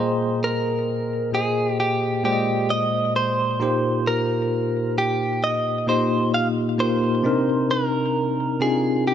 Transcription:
Already playing: tine electric piano A#2 A#3 G#4 C5 G5 A#5, clean electric guitar C5
0.00 tine electric piano D#5
0.44 clean electric guitar A#4
1.32 tine electric piano A#2 A#3 G#4 C5 D#5, clean electric guitar G#4
1.80 clean electric guitar G4
2.23 tine electric piano A#2 G#3 A#3 C5 D5, clean electric guitar G4
2.32 tine electric piano D#5
2.70 clean electric guitar D#5
3.16 clean electric guitar C5
3.59 tine electric piano A#2 A#3 D#4 F4 G4 C5
4.07 clean electric guitar A#4
4.98 clean electric guitar G4
5.44 clean electric guitar D#5
5.87 tine electric piano A#2 A#3 D#4 F4 G4 D#5, clean electric guitar C5
6.34 clean electric guitar F5
6.78 tine electric piano A#2 A#3 D#4 F4 G4 A#4, clean electric guitar C5
7.23 tine electric piano C3 C4 D4 D#4 A#4
7.71 clean electric guitar A#4
8.60 tine electric piano C3 C4 D4 D#4 F4, clean electric guitar G#4
9.07 clean electric guitar G4

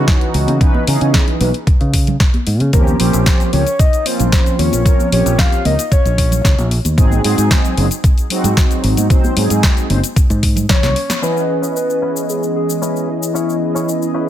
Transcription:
Already playing: analog polysynth E3 B3 C#4 D#4 F#4
0.08 kick, snare, closed hi-hat
0.21 closed hi-hat
0.34 fingered electric bass C#2, open hi-hat
0.48 fingered electric bass C#3, closed hi-hat, high conga
0.60 analog polysynth E3 B3 C#4 D#4 B4, kick, closed hi-hat
0.74 high conga
0.87 fingered electric bass C#3, analog polysynth E3 B3 C#4 D#4 G#4, open hi-hat
1.01 fingered electric bass C#3, closed hi-hat
1.14 kick, snare, closed hi-hat
1.28 closed hi-hat
1.40 fingered electric bass B1, analog polysynth E3 B3 C#4 D#4 B4, open hi-hat, high conga
1.54 closed hi-hat
1.67 kick, closed hi-hat
1.81 fingered electric bass C#3, closed hi-hat
1.94 kick, open hi-hat
2.07 closed hi-hat, low conga
2.20 kick, snare, closed hi-hat
2.34 closed hi-hat, high conga
2.47 fingered electric bass G#2, open hi-hat
2.60 fingered electric bass C#3, closed hi-hat, high conga
2.73 fingered electric bass D#2, analog polysynth F3 A#3 C4 C#4 G4, soft synth lead A#4, kick, closed hi-hat, shaker
2.87 high conga, shaker
2.99 fingered electric bass A#1, analog polysynth F3 A#3 C4 C#4 G4, soft synth lead C5, open hi-hat
3.13 fingered electric bass A#1, closed hi-hat, shaker
3.26 kick, snare, closed hi-hat, shaker
3.40 closed hi-hat, shaker
3.52 fingered electric bass C#2, analog polysynth F3 A#3 C4 C#4 G4, soft synth lead C#5, open hi-hat
3.67 closed hi-hat, shaker
3.79 soft synth lead D#5, kick, closed hi-hat, shaker
3.93 closed hi-hat, shaker
4.05 analog polysynth F3 A#3 C4 C#4 F4, soft synth lead C5, open hi-hat
4.20 fingered electric bass A#1, closed hi-hat, low conga, shaker
4.32 kick, snare, closed hi-hat, shaker
4.46 closed hi-hat, shaker
4.59 fingered electric bass D#2, soft synth lead C#5, open hi-hat
4.72 fingered electric bass A#1, closed hi-hat, high conga, shaker
4.85 analog polysynth F3 A#3 C4 C#4 A#4, kick, closed hi-hat, shaker
5.00 high conga, shaker
5.11 fingered electric bass A#1, analog polysynth F3 A#3 C4 C#4 G4, soft synth lead C#5, open hi-hat
5.26 fingered electric bass A#1, closed hi-hat, shaker
5.39 soft synth lead F5, kick, snare, closed hi-hat, shaker
5.52 closed hi-hat, shaker
5.64 fingered electric bass C#2, analog polysynth F3 A#3 C4 C#4 A#4, soft synth lead D#5, open hi-hat, high conga
5.79 closed hi-hat, shaker
5.92 soft synth lead C#5, kick, closed hi-hat, shaker
6.05 fingered electric bass A#1, closed hi-hat, shaker
6.18 kick, open hi-hat
6.31 closed hi-hat, low conga, shaker
6.45 fingered electric bass C#2, kick, snare, closed hi-hat, shaker
6.58 fingered electric bass A#1, closed hi-hat, high conga, shaker
6.71 open hi-hat
6.85 fingered electric bass D#2, closed hi-hat, high conga, shaker
6.97 fingered electric bass G#1, analog polysynth F#3 G#3 C4 D#4 G#4, kick, closed hi-hat, shaker
7.12 high conga, shaker
7.24 fingered electric bass G#2, analog polysynth F#3 G#3 C4 D#4 G#4, open hi-hat
7.38 fingered electric bass G#2, closed hi-hat, shaker
7.51 kick, snare, closed hi-hat, shaker
7.65 closed hi-hat, shaker
7.77 fingered electric bass F#1, analog polysynth F#3 G#3 C4 D#4 G#4, open hi-hat
7.91 closed hi-hat, shaker
8.04 kick, closed hi-hat, shaker
8.18 closed hi-hat, shaker
8.30 analog polysynth F#3 G#3 C4 D#4 F#4, open hi-hat
8.44 fingered electric bass G#2, closed hi-hat, low conga, shaker
8.57 kick, snare, closed hi-hat, shaker
8.71 closed hi-hat, shaker
8.84 fingered electric bass G#1, open hi-hat
8.97 fingered electric bass G#2, closed hi-hat, high conga, shaker
9.10 analog polysynth F#3 G#3 C4 D#4 C5, kick, closed hi-hat, shaker
9.24 high conga, shaker
9.36 fingered electric bass G#2, analog polysynth F#3 G#3 C4 D#4 G#4, open hi-hat
9.50 fingered electric bass G#2, closed hi-hat, shaker
9.63 kick, snare, closed hi-hat, shaker
9.77 closed hi-hat, shaker
9.89 fingered electric bass F#1, analog polysynth F#3 G#3 C4 D#4 C5, open hi-hat, high conga
10.04 closed hi-hat, shaker
10.16 kick, closed hi-hat, shaker
10.30 fingered electric bass G#2, closed hi-hat, shaker
10.43 kick, open hi-hat
10.56 closed hi-hat, low conga, shaker
10.69 soft synth lead C#5, kick, snare, closed hi-hat, high tom, shaker
10.83 fingered electric bass C2, snare, closed hi-hat, high conga, low conga, shaker
10.96 open hi-hat
11.10 snare, closed hi-hat, high conga, shaker
11.21 analog polysynth E3 B3 C#4 G#4 D#5, clean electric guitar C#4 E4 B4, soft synth lead B4, shaker
11.37 shaker
11.62 clean electric guitar C#4 E4 B4, shaker
11.76 soft synth lead B4, shaker
11.89 muted clean electric guitar stroke, shaker
12.02 clean electric guitar C#4 E4 B4
12.16 shaker
12.29 soft synth lead G#4, shaker
12.43 shaker
12.56 soft synth lead G#4
12.70 shaker
12.82 clean electric guitar C#4 E4 B4, shaker
12.96 shaker
13.09 soft synth lead E4
13.23 shaker
13.35 clean electric guitar C#4 E4 C#5, shaker
13.49 shaker
13.75 clean electric guitar C#4 E4 C#5, shaker
13.89 shaker
14.02 muted clean electric guitar stroke, shaker
14.14 clean electric guitar C#4 E4 B4

